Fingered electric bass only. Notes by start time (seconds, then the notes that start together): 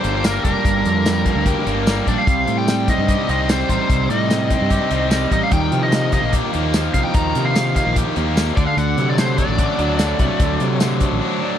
0.04 G1
0.44 F1
0.65 G1
0.86 F2
1.36 D2
1.66 G1
2.07 A#1
2.27 C2
2.48 A2
2.98 G2
3.29 C2
3.70 A1
3.90 C2
4.10 A2
4.61 G2
4.91 C2
5.32 A1
5.52 D#2
5.72 C3
6.23 A#1
6.55 D#2
6.95 C2
7.15 D#2
7.35 C3
7.87 A#1
8.17 D#2
8.57 D2
8.77 D2
8.97 C3
9.48 A1
9.79 D2
10.19 C2
10.40 D2
10.61 C3
11.12 A1